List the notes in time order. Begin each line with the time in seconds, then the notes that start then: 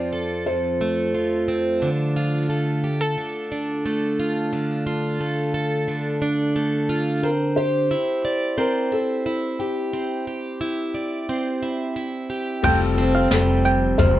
Already playing: F2 F3 C4 D5
0.13 A4
0.46 F2 C5
0.81 A3
1.15 F3
1.48 C4
1.82 D3
2.16 F4
2.50 A3
2.84 G4
3.01 A4
3.18 D3
3.52 D4
3.86 A3
4.19 F4
4.53 D3
4.87 F4
5.21 A3
5.54 A4
5.88 D3
6.22 D4
6.56 A3
6.89 F4
7.23 C4 A#4
7.56 G4 C5
7.91 E4
8.25 D5
8.58 C4 A#4
8.92 E4 A4
9.26 E4
9.59 G4
9.93 C4
10.27 G4
10.61 E4
10.95 D5
11.29 C4
11.63 E4
11.96 E4
12.30 G4
12.63 F1 F2 G3 C4 F4 A4 G5, kick, crash
12.98 C4, shaker
13.15 F5
13.31 F1 G3 A4, snare, shaker
13.65 G5, shaker
13.98 F1 F2 C5 F5, kick, shaker